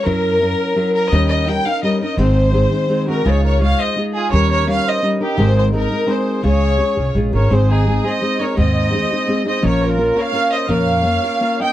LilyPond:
<<
  \new Staff \with { instrumentName = "Violin section" } { \time 3/4 \key des \major \tempo 4 = 170 bes'2~ bes'8 bes'8 | ees''8 ees''8 g''8 f''8 ees''8 ees''8 | c''2~ c''8 bes'8 | des''8 des''8 f''8 ees''8 r8 aes'8 |
des''8 des''8 f''8 ees''8 r8 g'8 | c''8 c''8 bes'4 c''4 | des''2 r8 des''8 | \key aes \major c''8 aes'4 ees''4 des''8 |
ees''2~ ees''8 ees''8 | des''8 bes'4 f''4 ees''8 | f''2~ f''8 g''8 | }
  \new Staff \with { instrumentName = "Trumpet" } { \time 3/4 \key des \major r2. | r2. | r2 r8 ges'8 | aes'8 bes'8 des''8 c''8 r8 f'8 |
bes'8 bes'8 des''8 c''8 r8 ees'8 | aes'8 aes'8 ees'4 aes'4 | aes'2 r8 bes'8 | \key aes \major aes'8 ees'4 c''4 bes'8 |
c''2~ c''8 c''8 | bes'8 f'4 des''4 c''8 | des''2~ des''8 ees''8 | }
  \new Staff \with { instrumentName = "Nylon-string guitar" } { \time 3/4 \key des \major <ges des' fes' bes'>4 <ges des' fes' bes'>4 <ges des' fes' bes'>4 | <ees g des' ees' bes'>4 <g des' ees' bes'>8 <des' ees' bes'>8 <g des' ees' bes'>8 <des' ees' bes'>8 | <aes, ees aes c' ees' aes'>4 <aes c' ees' aes'>8 <aes c' ees' aes'>8 <aes c' ees' aes'>8 <aes c' ees' aes'>8 | <des aes ees' f' aes'>4 <aes ees' f' aes'>4 <aes ees' f' aes'>4 |
<ees g des' ees' bes'>4 <g des' ees' bes'>4 <g des' ees' bes'>8 <des' ees' bes'>8 | <aes, ees aes c' ees' bes'>4 <aes c' ees' bes'>8 <aes c' ees' bes'>8 <aes c' ees' bes'>4 | <des aes des' f' aes'>4 <aes des' f' aes'>8 <des' f' aes'>8 <aes des' f' aes'>8 <des' f' aes'>8 | \key aes \major <aes, ees aes c' ees' aes'>4 <aes c' ees' aes'>8 <aes c' ees' aes'>8 <aes c' ees' aes'>8 <aes c' ees' aes'>8 |
<aes, ees aes c' ees' aes'>4 <aes c' ees' aes'>8 <aes c' ees' aes'>8 <aes c' ees' aes'>8 <aes c' ees' aes'>8 | <bes, f bes des' f' bes'>4 <bes des' f' bes'>8 <bes des' f' bes'>8 <bes des' f' bes'>4 | <bes, f bes des' f' bes'>4 <bes des' f' bes'>8 <bes des' f' bes'>8 <bes des' f' bes'>8 <bes des' f' bes'>8 | }
  \new Staff \with { instrumentName = "Upright bass" } { \clef bass \time 3/4 \key des \major ges,2 r4 | ees,2 r4 | aes,,2 r4 | des,2 r4 |
ees,2 r4 | aes,,2 r4 | des,4. c,8 bes,,8 aes,,8 | \key aes \major aes,,2 r4 |
ees,2 r4 | bes,,2 r4 | f,2 r4 | }
>>